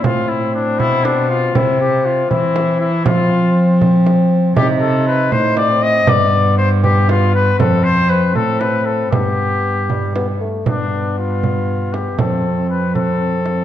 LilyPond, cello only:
\new Staff \with { instrumentName = "Cello" } { \clef bass \time 6/8 \key g \mixolydian \tempo 4. = 79 a,4. b,4. | c4. e4. | f2. | c4. a,4. |
g,2. | f,4. a,4. | g,2~ g,8 r8 | g,2. |
f,2. | }